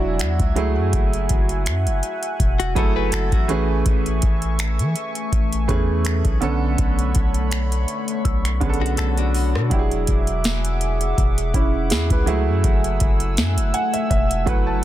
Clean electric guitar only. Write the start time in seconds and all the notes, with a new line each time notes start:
2.60 F#4
2.76 E4 G#4
2.96 G#4 B4
3.13 F#4 A4
3.33 F#4
8.81 D4 F#4
8.98 F#4 A4
9.18 D4 F#4